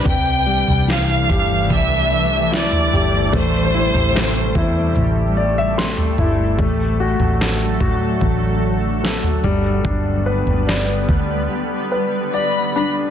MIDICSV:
0, 0, Header, 1, 6, 480
1, 0, Start_track
1, 0, Key_signature, 0, "major"
1, 0, Tempo, 816327
1, 31, Time_signature, 4, 2, 24, 8
1, 5790, Tempo, 828729
1, 7676, End_track
2, 0, Start_track
2, 0, Title_t, "Violin section"
2, 0, Program_c, 0, 48
2, 40, Note_on_c, 0, 79, 117
2, 499, Note_off_c, 0, 79, 0
2, 533, Note_on_c, 0, 77, 97
2, 984, Note_off_c, 0, 77, 0
2, 1015, Note_on_c, 0, 76, 94
2, 1487, Note_off_c, 0, 76, 0
2, 1497, Note_on_c, 0, 74, 84
2, 1944, Note_off_c, 0, 74, 0
2, 1972, Note_on_c, 0, 72, 97
2, 2922, Note_off_c, 0, 72, 0
2, 7240, Note_on_c, 0, 83, 81
2, 7459, Note_off_c, 0, 83, 0
2, 7479, Note_on_c, 0, 83, 76
2, 7585, Note_off_c, 0, 83, 0
2, 7676, End_track
3, 0, Start_track
3, 0, Title_t, "Grand piano"
3, 0, Program_c, 1, 0
3, 0, Control_c, 1, 64, 127
3, 26, Note_on_c, 1, 48, 59
3, 39, Control_c, 1, 64, 0
3, 131, Control_c, 1, 64, 127
3, 272, Note_on_c, 1, 55, 48
3, 516, Note_on_c, 1, 52, 52
3, 763, Note_on_c, 1, 67, 51
3, 1214, Note_off_c, 1, 55, 0
3, 1455, Note_off_c, 1, 52, 0
3, 1482, Note_on_c, 1, 64, 53
3, 1698, Note_off_c, 1, 67, 0
3, 1723, Note_on_c, 1, 67, 53
3, 1933, Note_off_c, 1, 48, 0
3, 1946, Note_off_c, 1, 64, 0
3, 1954, Note_off_c, 1, 67, 0
3, 1957, Note_on_c, 1, 57, 67
3, 1967, Control_c, 1, 64, 0
3, 2062, Control_c, 1, 64, 127
3, 2202, Note_on_c, 1, 64, 54
3, 2432, Note_off_c, 1, 57, 0
3, 2441, Note_on_c, 1, 57, 50
3, 2673, Note_off_c, 1, 64, 0
3, 2681, Note_on_c, 1, 64, 55
3, 3157, Note_on_c, 1, 74, 57
3, 3267, Note_off_c, 1, 74, 0
3, 3282, Note_on_c, 1, 76, 66
3, 3371, Note_off_c, 1, 57, 0
3, 3389, Note_off_c, 1, 76, 0
3, 3398, Note_on_c, 1, 57, 52
3, 3398, Note_on_c, 1, 84, 65
3, 3612, Note_off_c, 1, 64, 0
3, 3639, Note_on_c, 1, 64, 55
3, 3851, Note_off_c, 1, 84, 0
3, 3860, Note_off_c, 1, 57, 0
3, 3868, Note_off_c, 1, 64, 0
3, 3877, Note_on_c, 1, 57, 59
3, 3879, Control_c, 1, 64, 0
3, 3983, Control_c, 1, 64, 127
3, 4116, Note_on_c, 1, 66, 55
3, 4356, Note_on_c, 1, 69, 53
3, 4583, Note_off_c, 1, 66, 0
3, 4592, Note_on_c, 1, 66, 52
3, 5287, Note_off_c, 1, 69, 0
3, 5313, Note_on_c, 1, 69, 53
3, 5525, Note_off_c, 1, 66, 0
3, 5527, Note_off_c, 1, 57, 0
3, 5544, Note_off_c, 1, 69, 0
3, 5552, Note_on_c, 1, 55, 72
3, 5555, Control_c, 1, 64, 0
3, 5649, Control_c, 1, 64, 127
3, 5795, Note_on_c, 1, 62, 58
3, 6030, Note_on_c, 1, 71, 53
3, 6268, Note_on_c, 1, 74, 52
3, 6725, Note_off_c, 1, 62, 0
3, 6963, Note_off_c, 1, 71, 0
3, 6989, Note_on_c, 1, 71, 42
3, 7204, Note_off_c, 1, 74, 0
3, 7233, Note_on_c, 1, 74, 55
3, 7448, Note_off_c, 1, 55, 0
3, 7476, Note_on_c, 1, 62, 64
3, 7676, Note_off_c, 1, 62, 0
3, 7676, Note_off_c, 1, 71, 0
3, 7676, Note_off_c, 1, 74, 0
3, 7676, End_track
4, 0, Start_track
4, 0, Title_t, "Ambient pad"
4, 0, Program_c, 2, 92
4, 30, Note_on_c, 2, 48, 72
4, 30, Note_on_c, 2, 57, 69
4, 31, Note_on_c, 2, 52, 86
4, 31, Note_on_c, 2, 55, 70
4, 33, Note_on_c, 2, 62, 70
4, 1939, Note_off_c, 2, 52, 0
4, 1939, Note_off_c, 2, 57, 0
4, 1941, Note_off_c, 2, 62, 0
4, 1969, Note_on_c, 2, 57, 84
4, 3848, Note_off_c, 2, 48, 0
4, 3849, Note_off_c, 2, 55, 0
4, 3873, Note_on_c, 2, 50, 79
4, 3875, Note_on_c, 2, 54, 65
4, 5530, Note_off_c, 2, 57, 0
4, 5533, Note_off_c, 2, 54, 0
4, 5552, Note_on_c, 2, 59, 82
4, 5553, Note_on_c, 2, 55, 72
4, 7676, Note_off_c, 2, 50, 0
4, 7676, Note_off_c, 2, 55, 0
4, 7676, Note_off_c, 2, 59, 0
4, 7676, End_track
5, 0, Start_track
5, 0, Title_t, "Fingered electric bass"
5, 0, Program_c, 3, 33
5, 32, Note_on_c, 3, 36, 89
5, 373, Note_off_c, 3, 36, 0
5, 402, Note_on_c, 3, 36, 86
5, 739, Note_off_c, 3, 36, 0
5, 761, Note_on_c, 3, 31, 82
5, 1003, Note_off_c, 3, 31, 0
5, 1003, Note_on_c, 3, 36, 109
5, 1698, Note_off_c, 3, 36, 0
5, 1723, Note_on_c, 3, 31, 84
5, 1944, Note_off_c, 3, 31, 0
5, 1960, Note_on_c, 3, 33, 98
5, 2295, Note_off_c, 3, 33, 0
5, 2319, Note_on_c, 3, 33, 85
5, 2653, Note_off_c, 3, 33, 0
5, 2678, Note_on_c, 3, 40, 88
5, 2899, Note_off_c, 3, 40, 0
5, 2920, Note_on_c, 3, 33, 97
5, 3612, Note_off_c, 3, 33, 0
5, 3635, Note_on_c, 3, 31, 86
5, 3857, Note_off_c, 3, 31, 0
5, 3873, Note_on_c, 3, 33, 105
5, 4208, Note_off_c, 3, 33, 0
5, 4230, Note_on_c, 3, 33, 91
5, 4566, Note_off_c, 3, 33, 0
5, 4590, Note_on_c, 3, 45, 79
5, 4812, Note_off_c, 3, 45, 0
5, 4831, Note_on_c, 3, 33, 99
5, 5525, Note_off_c, 3, 33, 0
5, 5549, Note_on_c, 3, 31, 81
5, 5773, Note_off_c, 3, 31, 0
5, 5790, Note_on_c, 3, 31, 95
5, 6124, Note_off_c, 3, 31, 0
5, 6148, Note_on_c, 3, 31, 85
5, 6484, Note_off_c, 3, 31, 0
5, 6507, Note_on_c, 3, 38, 77
5, 6729, Note_off_c, 3, 38, 0
5, 7676, End_track
6, 0, Start_track
6, 0, Title_t, "Drums"
6, 32, Note_on_c, 9, 36, 94
6, 35, Note_on_c, 9, 43, 98
6, 91, Note_off_c, 9, 36, 0
6, 94, Note_off_c, 9, 43, 0
6, 398, Note_on_c, 9, 43, 55
6, 457, Note_off_c, 9, 43, 0
6, 528, Note_on_c, 9, 38, 102
6, 587, Note_off_c, 9, 38, 0
6, 761, Note_on_c, 9, 36, 80
6, 763, Note_on_c, 9, 43, 58
6, 820, Note_off_c, 9, 36, 0
6, 822, Note_off_c, 9, 43, 0
6, 1000, Note_on_c, 9, 43, 53
6, 1002, Note_on_c, 9, 36, 78
6, 1059, Note_off_c, 9, 43, 0
6, 1061, Note_off_c, 9, 36, 0
6, 1491, Note_on_c, 9, 38, 116
6, 1550, Note_off_c, 9, 38, 0
6, 1602, Note_on_c, 9, 43, 62
6, 1661, Note_off_c, 9, 43, 0
6, 1721, Note_on_c, 9, 43, 67
6, 1780, Note_off_c, 9, 43, 0
6, 1961, Note_on_c, 9, 36, 99
6, 1961, Note_on_c, 9, 43, 92
6, 2020, Note_off_c, 9, 36, 0
6, 2020, Note_off_c, 9, 43, 0
6, 2320, Note_on_c, 9, 43, 60
6, 2379, Note_off_c, 9, 43, 0
6, 2448, Note_on_c, 9, 38, 99
6, 2507, Note_off_c, 9, 38, 0
6, 2677, Note_on_c, 9, 36, 78
6, 2678, Note_on_c, 9, 43, 54
6, 2736, Note_off_c, 9, 36, 0
6, 2736, Note_off_c, 9, 43, 0
6, 2915, Note_on_c, 9, 43, 54
6, 2974, Note_off_c, 9, 43, 0
6, 3404, Note_on_c, 9, 38, 112
6, 3463, Note_off_c, 9, 38, 0
6, 3517, Note_on_c, 9, 43, 62
6, 3575, Note_off_c, 9, 43, 0
6, 3635, Note_on_c, 9, 43, 69
6, 3694, Note_off_c, 9, 43, 0
6, 3873, Note_on_c, 9, 36, 106
6, 3875, Note_on_c, 9, 43, 93
6, 3931, Note_off_c, 9, 36, 0
6, 3934, Note_off_c, 9, 43, 0
6, 4232, Note_on_c, 9, 43, 59
6, 4290, Note_off_c, 9, 43, 0
6, 4358, Note_on_c, 9, 38, 99
6, 4417, Note_off_c, 9, 38, 0
6, 4589, Note_on_c, 9, 36, 76
6, 4590, Note_on_c, 9, 43, 65
6, 4648, Note_off_c, 9, 36, 0
6, 4649, Note_off_c, 9, 43, 0
6, 4828, Note_on_c, 9, 43, 54
6, 4830, Note_on_c, 9, 36, 83
6, 4887, Note_off_c, 9, 43, 0
6, 4889, Note_off_c, 9, 36, 0
6, 5319, Note_on_c, 9, 38, 115
6, 5378, Note_off_c, 9, 38, 0
6, 5431, Note_on_c, 9, 43, 62
6, 5490, Note_off_c, 9, 43, 0
6, 5550, Note_on_c, 9, 43, 72
6, 5608, Note_off_c, 9, 43, 0
6, 5790, Note_on_c, 9, 36, 106
6, 5790, Note_on_c, 9, 43, 92
6, 5848, Note_off_c, 9, 36, 0
6, 5848, Note_off_c, 9, 43, 0
6, 6151, Note_on_c, 9, 43, 53
6, 6209, Note_off_c, 9, 43, 0
6, 6277, Note_on_c, 9, 38, 98
6, 6335, Note_off_c, 9, 38, 0
6, 6508, Note_on_c, 9, 36, 75
6, 6509, Note_on_c, 9, 43, 61
6, 6566, Note_off_c, 9, 36, 0
6, 6567, Note_off_c, 9, 43, 0
6, 7676, End_track
0, 0, End_of_file